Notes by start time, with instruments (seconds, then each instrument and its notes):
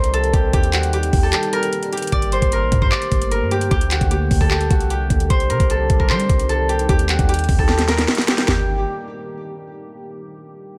Already playing: 808-style bass C2, ambient pad D#3 G3 C4 G4, harp G4 A#4 C5
0.04 closed hi-hat
0.14 harp A4, closed hi-hat
0.24 closed hi-hat
0.33 808-style bass C2, harp G4, kick, closed hi-hat
0.53 808-style bass D#2, ambient pad G3 A#3, harp G4, kick, closed hi-hat
0.63 closed hi-hat
0.73 harp F#4, clap, closed hi-hat
0.83 closed hi-hat
0.93 harp G4, closed hi-hat
1.03 closed hi-hat
1.13 808-style bass D#2, kick, open hi-hat
1.23 harp A4
1.32 harp G4, clap, closed hi-hat
1.43 closed hi-hat
1.53 harp A#4, closed hi-hat
1.63 closed hi-hat
1.73 closed hi-hat
1.83 closed hi-hat
1.92 harp G4, closed hi-hat
1.97 closed hi-hat
2.02 closed hi-hat
2.07 closed hi-hat
2.12 808-style bass G1, ambient pad D3 A3 A#3 G4, harp D5, kick, closed hi-hat
2.22 closed hi-hat
2.32 harp C5, closed hi-hat
2.42 808-style bass G1, kick, closed hi-hat
2.52 harp A#4, closed hi-hat
2.62 808-style bass A#1
2.72 808-style bass G2, kick, closed hi-hat
2.82 harp C5, kick
2.91 harp D5, clap
3.02 closed hi-hat
3.12 808-style bass G1, kick, closed hi-hat
3.22 closed hi-hat
3.31 harp A#4, closed hi-hat
3.41 808-style bass G2
3.51 harp G4, closed hi-hat
3.61 closed hi-hat
3.71 808-style bass D2, ambient pad G3, harp G4, kick, closed hi-hat
3.81 closed hi-hat
3.91 harp F#4, clap, closed hi-hat
4.01 808-style bass D2, kick, closed hi-hat
4.11 harp G4, closed hi-hat
4.31 808-style bass D2, kick, open hi-hat
4.41 harp A4, kick
4.51 harp G4, clap
4.61 closed hi-hat
4.70 808-style bass C2, harp F#4, kick, closed hi-hat
4.80 closed hi-hat
4.90 harp G4, closed hi-hat
5.10 808-style bass D2, kick, closed hi-hat
5.20 closed hi-hat
5.30 808-style bass C2, ambient pad D#3 C4, harp C5, kick, closed hi-hat
5.40 closed hi-hat
5.50 808-style bass C3, harp A#4, closed hi-hat
5.60 808-style bass C2, kick, closed hi-hat
5.70 harp A4, closed hi-hat
5.90 808-style bass C2, kick, closed hi-hat
5.99 harp A#4, kick
6.10 808-style bass G3, harp C5, clap
6.20 closed hi-hat
6.29 808-style bass C2, kick, closed hi-hat
6.39 closed hi-hat
6.49 harp A4, closed hi-hat
6.69 harp G4, closed hi-hat
6.79 closed hi-hat
6.89 808-style bass D#2, ambient pad D#3 A#3, harp G4, kick, closed hi-hat
6.99 closed hi-hat
7.09 harp F#4, clap, closed hi-hat
7.19 808-style bass D#2, kick, closed hi-hat
7.29 harp G4, closed hi-hat
7.34 closed hi-hat
7.39 closed hi-hat
7.44 closed hi-hat
7.49 808-style bass D#2, kick, open hi-hat
7.59 harp A4, kick
7.68 harp G4, snare
7.78 snare, closed hi-hat
7.88 harp A#4, snare, closed hi-hat
7.98 snare, closed hi-hat
8.08 snare, closed hi-hat
8.15 snare, closed hi-hat
8.22 closed hi-hat
8.28 harp G4, snare, closed hi-hat
8.38 snare, closed hi-hat
8.48 808-style bass G1, harp G4, snare, floor tom